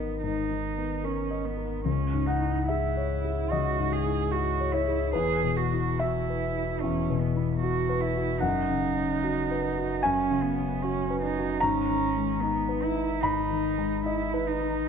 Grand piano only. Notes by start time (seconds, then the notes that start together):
Already playing: G#2 D#3 B3 A#4 D#5
0.23 G#2
0.50 D#3
0.77 B3
1.03 A#4
1.31 D#5
1.57 A#4
1.85 C#2
2.13 G#2
2.27 F#5
2.41 E4
2.68 G#4 E5
2.97 C#5
3.24 G#4
3.52 C#2 D#5
3.79 G#2
4.06 E4
4.34 G#4
4.60 C#5
4.74 C#5
4.88 G#4
5.13 E2 B4
5.44 B2
5.73 E4
6.00 F#4 E5
6.30 B4
6.57 F#4
6.84 E2
7.10 B2
7.36 E4
7.63 F#4
7.89 B4
8.16 F#4
8.40 F#2 F#5
8.70 C#3
8.96 C#4
9.23 F#4
9.51 B4
9.78 F#4
10.03 F#2 G#5
10.31 C#3
10.57 C#4
10.84 F#4
11.10 B4
11.38 F#4
11.60 G#2 A#5
11.90 D#3
12.16 G#3
12.43 D#4
12.69 B4
12.95 D#4
13.23 G#2 B5
13.50 D#3
13.78 G#3
14.06 D#5
14.34 B4
14.60 D#4